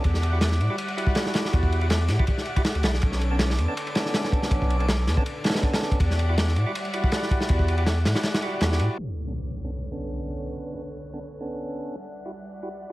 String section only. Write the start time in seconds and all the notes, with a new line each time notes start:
0.04 G4 D5 E5 F#5
0.60 G3 D5 E5 F#5
1.53 G4 D5 E5 F#5
2.09 G4 D5 E5 F#5
3.02 C#4 D4 A4 B4
3.58 D3 A4 B4
4.52 C#4 D4 A4 B4
5.07 D3 A4 B4
6.01 G4 D5 E5 F#5
6.56 G3 D5 E5 F#5
7.50 G4 D5 E5 F#5
8.05 G3 D5 E5 F#5
8.98 D3 A4 B4 C#5
11.96 G3 D5 E5 F#5